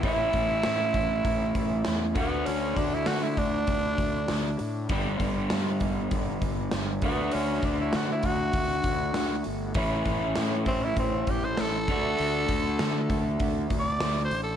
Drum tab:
HH |oooooooo|oooooooo|oooooooo|oooooooo|
SD |--o---o-|--o---o-|--o---o-|--o---o-|
BD |oo-ooo-o|-o-ooo--|oo-ooo-o|-o-ooo--|

HH |oooooooo|oooooooo|
SD |--o---o-|--o---o-|
BD |oo-ooo-o|-o-ooo--|